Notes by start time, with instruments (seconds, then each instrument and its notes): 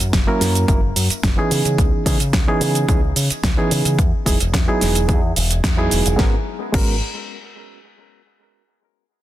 0.00 fingered electric bass F#2, closed hi-hat, cabasa
0.13 fingered electric bass F#1, kick, snare, closed hi-hat, cabasa
0.27 reed electric piano F#3 A#3 C#4 E4 A#4
0.41 fingered electric bass F#2, snare, open hi-hat, cabasa
0.55 closed hi-hat, cabasa
0.68 fingered electric bass F#1, reed electric piano F#3 A#3 C#4 E4 A#4, kick, closed hi-hat, cabasa
0.96 fingered electric bass F#2, open hi-hat, cabasa
1.10 muted fingered electric bass stroke, closed hi-hat, cabasa
1.23 fingered electric bass F#1, kick, snare, closed hi-hat, cabasa
1.37 reed electric piano E3 B3 C#4 D#4 G#4
1.51 fingered electric bass C#3, open hi-hat, cabasa
1.65 fingered electric bass C#3, closed hi-hat, cabasa
1.78 fingered electric bass C#2, kick, closed hi-hat, cabasa
2.06 fingered electric bass C#3, reed electric piano E3 B3 C#4 D#4 G#4, kick, open hi-hat, cabasa
2.20 fingered electric bass C#3, closed hi-hat, cabasa
2.33 fingered electric bass C#2, kick, snare, closed hi-hat, cabasa
2.47 reed electric piano E3 B3 C#4 D#4 G#4
2.61 fingered electric bass C#3, open hi-hat, cabasa
2.75 closed hi-hat, cabasa
2.88 fingered electric bass C#2, reed electric piano E3 B3 C#4 D#4 G#4, kick, closed hi-hat, cabasa
3.16 fingered electric bass C#3, open hi-hat, cabasa
3.30 muted fingered electric bass stroke, closed hi-hat, cabasa
3.44 fingered electric bass C#2, kick, snare, closed hi-hat, cabasa
3.57 reed electric piano E3 B3 C#4 D#4 G#4
3.71 fingered electric bass C#3, open hi-hat, cabasa
3.85 fingered electric bass C#3, closed hi-hat, cabasa
3.99 fingered electric bass E2, kick, closed hi-hat, cabasa
4.25 fingered electric bass E1, reed electric piano F#3 B3 D#4 E4 G#4, kick, open hi-hat, cabasa
4.40 fingered electric bass E1, closed hi-hat, cabasa
4.54 fingered electric bass E2, kick, snare, closed hi-hat, cabasa
4.67 reed electric piano F#3 B3 D#4 E4 G#4
4.81 fingered electric bass E1, snare, open hi-hat, cabasa
4.95 closed hi-hat, cabasa
5.08 fingered electric bass E2, reed electric piano F#3 B3 D#4 E4 G#4, kick, closed hi-hat, cabasa
5.36 fingered electric bass E1, open hi-hat, cabasa
5.51 closed hi-hat, cabasa
5.64 fingered electric bass E2, kick, snare, closed hi-hat, cabasa
5.77 reed electric piano F#3 B3 D#4 E4 G#4
5.91 fingered electric bass E1, open hi-hat, cabasa
6.06 fingered electric bass E1, closed hi-hat, cabasa
6.17 reed electric piano G#3 B3 C#4 F#4 A#4, kick, snare
6.73 fingered electric bass G#1, reed electric piano G#3 B3 C#4 F#4 A#4, kick, crash